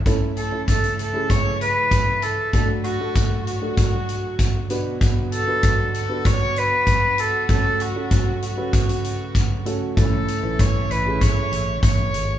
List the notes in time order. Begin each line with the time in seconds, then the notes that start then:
0.06 A2 C#3 E3 A3 C#4 E4 A4, kick, closed hi-hat
0.37 A4, closed hi-hat
0.52 A3 C#4 E4 A4
0.68 A4, kick, closed hi-hat
0.84 closed hi-hat
0.99 A4, closed hi-hat
1.13 A3 C#4 E4 G#4
1.30 C#5, kick, closed hi-hat
1.61 B4, closed hi-hat
1.91 kick, closed hi-hat
2.22 A4, closed hi-hat
2.53 A2 D3 F#3 A3 D4 F#4 A4, kick, closed hi-hat
2.84 F#4, closed hi-hat
3.00 A3 D4 F#4 A4
3.15 kick, closed hi-hat
3.46 F#4, closed hi-hat
3.62 A3 D4 F#4 A4
3.77 kick, closed hi-hat
4.09 closed hi-hat
4.39 kick, closed hi-hat
4.70 B2 B3 D4 F#4 B4, closed hi-hat
5.01 kick, closed hi-hat
5.32 A4, closed hi-hat
5.47 B3 D4 F#4 B4
5.63 kick, closed hi-hat
5.94 A4, closed hi-hat
6.09 B3 D4 F#4 B4
6.25 C#5, kick, closed hi-hat
6.56 B4, closed hi-hat
6.87 kick, closed hi-hat
7.18 A4, closed hi-hat
7.48 C#3 F#3 A3 C#4 F#4 A4, kick, closed hi-hat
7.80 F#4, closed hi-hat
7.95 A3 C#4 F#4 A4
8.11 kick, closed hi-hat
8.42 F#4, closed hi-hat
8.57 A3 C#4 F#4 B4
8.73 kick, closed hi-hat
8.89 closed hi-hat
9.04 closed hi-hat
9.35 kick, closed hi-hat
9.65 A3 C#4 F#4 A4, closed hi-hat
9.96 A1 A2 E3 A3 C#4 E4 A4, kick, closed hi-hat
10.28 closed hi-hat
10.43 A1 A3 C#4 E4 B4
10.59 A1 C#5, kick, closed hi-hat
10.90 A1 B4, closed hi-hat
11.05 A3 C#4 E4 G#4
11.21 C#5, kick, closed hi-hat
11.52 A1, closed hi-hat
11.83 A1 C#5, kick, closed hi-hat
12.14 G#1, closed hi-hat